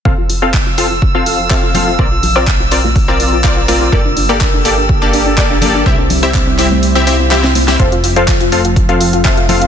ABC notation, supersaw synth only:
X:1
M:4/4
L:1/16
Q:1/4=124
K:F
V:1 name="Supersaw synth"
[CFAf] z2 [CFAf] z2 [CFAf] z2 [CFAf]3 [CFAf]2 [CFAf]2 | [CFBd] z2 [CFBd] z2 [CFBd] z2 [CFBd]3 [CFBd]2 [CFBd]2 | [B,GAd] z2 [B,GAd] z2 [B,GAd] z2 [B,GAd]3 [B,GAd]2 [B,GAd]2 | [CEGe] z2 [CEGe] z2 [CEGe] z2 [CEGe] [CEGe] z [CEGe] z2 [CEGe] |
[CFAf] z2 [CFAf] z2 [CFAf] z2 [CFAf]3 [CFAf]2 [CFAf]2 |]